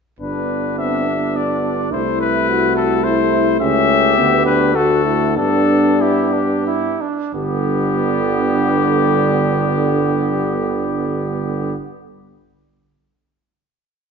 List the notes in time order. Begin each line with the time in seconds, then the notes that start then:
0.19 G1 B3 D4 B4
0.78 C4 E5
1.08 B3
1.36 D4 D5
1.92 C2 A3 E4 C5
2.20 B4
2.49 F#4
2.76 A4
3.04 E4 C5
3.60 C#2 C#4 G4 E5
4.17 D2 B3
4.46 D4 B4
4.75 A3 F#4 A4
5.05 E4
5.37 G2 B3 D4 A4
6.00 E4 G4
6.33 D4
6.67 E4
7.01 D4
7.34 G1 D3 G3 B3 G4